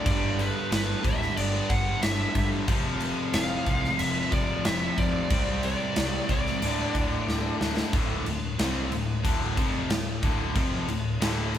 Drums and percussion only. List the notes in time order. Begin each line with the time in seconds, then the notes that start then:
0.06 kick, crash
0.39 crash
0.72 snare, crash
1.04 kick, crash
1.22 snare
1.37 crash
1.70 kick, crash
2.02 snare, crash
2.35 kick, crash
2.68 kick, crash
3.00 crash
3.33 snare, crash
3.66 kick, crash
3.84 snare
3.99 crash
4.32 kick, crash
4.65 snare, crash
4.98 kick, crash
5.30 kick, crash
5.63 crash
5.96 snare, crash
6.29 kick, crash
6.46 snare
6.62 crash
6.95 kick, crash
7.28 snare
7.61 snare
7.77 snare
7.93 kick, crash
8.26 crash
8.59 snare, crash
8.92 crash
9.25 kick, crash
9.57 kick, crash
9.90 snare, crash
10.23 kick, crash
10.56 kick, crash
10.88 crash
11.22 snare, crash
11.54 crash